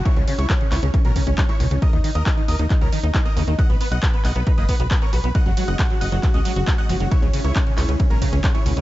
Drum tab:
RD |----------------|----------------|----------------|x-x-x-x-x-x-x-x-|
HH |xxoxxxoxxxoxxxox|xxoxxxoxxxoxxxox|xxoxxxoxxxoxxxox|xxoxxxoxxxoxxxox|
CP |----x-x-----x---|----x---x---x---|----x-x-----x---|----x---x---x---|
BD |o---o---o-o-o---|o---o---o---o---|o---o---o-o-o---|o---o---o---o---|

RD |x-x-x-x-x-x-x-x-|
HH |xxoxxxoxxxoxxxox|
CP |----x-x-----x---|
BD |o---o---o-o-o---|